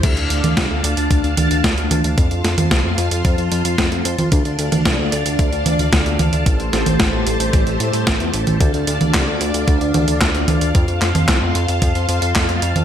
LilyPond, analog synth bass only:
\new Staff \with { instrumentName = "Analog synth bass" } { \clef bass \time 4/4 \key d \minor \tempo 4 = 112 d,16 d,16 d,16 d,16 c,16 d,16 d,16 d,16 d,16 d,16 d,16 d,16 d,16 d,16 d,16 d,16 | f,16 f,16 f,16 f,16 c,16 f,16 f,16 f,16 f,16 f,16 f,16 f,16 f,16 f,16 f,16 f,16 | d,16 d,16 d,16 d,16 c,16 d,16 d,16 d,16 d,16 d,16 d,16 d,16 d,16 d,16 d,16 d,16 | a,,16 a,,16 a,,16 a,,16 g,,16 a,,16 a,,16 a,,16 a,,16 a,,16 a,16 a,16 a,,16 e,16 a,,16 a,,16 |
d,16 d,16 d,16 d,16 c,16 d,16 d,16 d,16 d,16 d,16 d,16 d,16 d,16 d,16 d,16 d,16 | f,16 f,16 f,16 f,16 c,16 f,16 f,16 f,16 f,16 f,16 f,16 f,16 f,16 f,16 f,16 f,16 | }